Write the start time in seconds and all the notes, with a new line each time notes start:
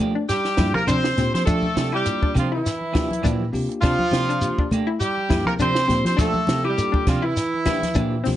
Already playing: D4
0.00 F3 A3 A#3 D4 G4, shekere
0.15 D4, muted clean electric guitar stroke
0.28 G3 G4, snare, closed hi-hat, shekere
0.44 muted clean electric guitar stroke, snare, high conga
0.57 G2 F3 A#3 D4 E4 F4 G4, kick, snare, closed hi-hat, high conga, claves, shekere
0.73 C3 A#3 A#4, muted clean electric guitar stroke, high conga
0.87 C3 F3 A#3 C4 D4 G4 C5, closed hi-hat, high conga, low conga, claves, shekere
1.04 F4 G4, snare
1.16 A#2 A#3 C4 D4 F4 G4, muted clean electric guitar stroke, snare, closed hi-hat, low conga, shekere
1.33 F3 C4 C5, muted clean electric guitar stroke, snare, closed hi-hat
1.46 F3 A3 A#3 D4 G4 A4, kick, closed hi-hat, claves, shekere
1.63 high conga
1.75 C3 F3 A#3 D4 G4, snare, closed hi-hat, high conga, shekere
1.92 G3 E4 G4, muted clean electric guitar stroke, claves
2.05 A#3 D4 F4 G4, muted clean electric guitar stroke, closed hi-hat, high conga, shekere
2.21 D4, muted clean electric guitar stroke, kick
2.34 C3 F3 A#3 D4 F4 G4, kick, closed hi-hat, low conga, claves, shekere
2.40 F3
2.50 E4, muted clean electric guitar stroke
2.55 E3 E4
2.66 snare, closed hi-hat, shekere
2.79 muted clean electric guitar stroke, high conga
2.92 F3 A#3 D4 E4 F4 G4, kick, snare, closed hi-hat, high conga, low conga, claves, shekere
3.09 muted clean electric guitar stroke, closed hi-hat, high conga
3.22 A#2 F3 A#3 D4 G4, kick, high conga, low conga, claves, shekere
3.26 closed hi-hat
3.39 F4 G4
3.52 C3 A#3 D4 F4 G4, muted clean electric guitar stroke, open hi-hat, low conga, shekere
3.69 muted clean electric guitar stroke, closed hi-hat
3.81 C3 F3 A#3 D4 F4 G4, kick, snare, closed hi-hat, high conga, claves, shekere
3.99 high conga
4.11 C3 A#3 D4 G4, snare, closed hi-hat, high conga, shekere
4.29 D4, muted clean electric guitar stroke, closed hi-hat, claves
4.41 A#3 D4 F4 G4, muted clean electric guitar stroke, closed hi-hat, high conga, shekere
4.58 D4, muted fingered electric bass stroke, muted clean electric guitar stroke, kick
4.71 A3 A#3 D4 G4, closed hi-hat, low conga, claves, shekere
4.87 E4, muted clean electric guitar stroke
5.00 G3 G4, closed hi-hat, shekere
5.18 muted clean electric guitar stroke, high conga
5.29 G2 F3 A#3 D4 E4 F4 G4, kick, snare, closed hi-hat, high conga, claves, shekere
5.33 A#3 D4 G4
5.46 C3 A#3 A#4, muted clean electric guitar stroke, high conga
5.59 C3 F3 A#3 C4 D4 G4 C5, closed hi-hat, high conga, low conga, claves, shekere
5.74 F4 G4, snare
5.87 A#2 A#3 C4 D4 F4 G4, muted clean electric guitar stroke, snare, closed hi-hat, high conga, low conga, shekere
6.05 F3 C4 C5, muted clean electric guitar stroke, snare, closed hi-hat
6.17 F3 A3 A#3 D4 G4 A4, kick, snare, closed hi-hat, high conga, claves, shekere
6.34 high conga
6.47 C3 F3 A#3 G4, muted clean electric guitar stroke, snare, closed hi-hat, high conga, shekere
6.64 G3 E4 G4, muted clean electric guitar stroke, claves
6.77 A#3 D4 F4 A4, muted clean electric guitar stroke, closed hi-hat, high conga, shekere
6.92 D4, muted clean electric guitar stroke, kick
7.07 C3 F3 A#3 D4 F4 G4, kick, snare, closed hi-hat, low conga, claves, shekere
7.22 E3 E4, muted clean electric guitar stroke
7.37 snare, closed hi-hat, shekere
7.54 muted clean electric guitar stroke, high conga
7.66 F3 A#3 D4 E4 F4 G4, kick, snare, closed hi-hat, high conga, low conga, claves, shekere
7.82 muted clean electric guitar stroke, snare, closed hi-hat, high conga
7.94 A#2 F3 A#3 D4 G4, kick, closed hi-hat, high conga, low conga, claves, shekere
8.11 F4 G4
8.24 C3 A#3 C4 D4 F4 G4, muted clean electric guitar stroke, snare, open hi-hat, high conga, low conga, shekere